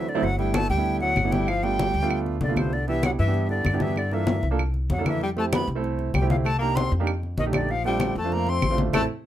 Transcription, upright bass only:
0.22 0.66 G1 medium
0.70 1.13 D2 medium
1.16 1.89 G1 medium
1.94 2.38 D2 medium
2.41 3.13 C2 medium
3.19 3.63 G2 medium
3.66 4.38 G2 loud
4.43 4.86 C2 medium
4.90 5.62 F2 medium
5.67 6.11 C2 medium
6.14 6.86 C2 medium
6.92 7.35 F2 loud
7.37 8.10 A#1 medium
8.15 8.59 F2 medium
8.62 8.91 A1 loud
8.94 9.05 A1 medium

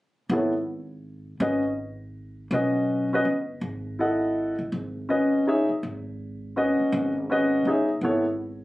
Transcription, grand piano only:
0.31 0.52 B3 soft
0.31 0.52 E4 soft
0.31 0.52 A4 soft
0.31 0.53 C#5 soft
1.40 1.61 C#4 soft
1.40 1.62 F#4 soft
1.40 1.62 B4 soft
1.40 1.62 D#5 medium
2.52 3.07 C#4 soft
2.52 3.07 F#4 soft
2.52 3.08 B4 soft
2.52 3.08 D#5 soft
3.13 3.24 C#4 medium
3.13 3.24 F#4 medium
3.13 3.25 B4 medium
3.13 3.25 D#5 medium
3.99 4.54 E4 soft
3.99 4.55 A4 soft
3.99 4.55 D#5 soft
3.99 4.55 F#5 medium
5.09 5.44 C#4 soft
5.09 5.45 F#4 soft
5.09 5.45 B4 soft
5.09 5.45 D#5 medium
5.47 5.67 D#4 medium
5.47 5.68 G#4 soft
5.47 5.68 C#5 soft
5.47 5.68 E5 medium
6.56 7.11 C#4 soft
6.56 7.12 F#4 soft
6.56 7.12 B4 soft
6.56 7.12 D#5 medium
7.30 7.65 C#4 medium
7.30 7.65 F#4 soft
7.30 7.66 B4 medium
7.30 7.66 D#5 medium
7.67 7.87 D#4 medium
7.67 7.88 G#4 soft
7.67 7.88 C#5 soft
7.67 7.89 E5 medium
8.02 8.24 B3 soft
8.02 8.24 E4 soft
8.02 8.24 A4 soft
8.02 8.25 C#5 medium

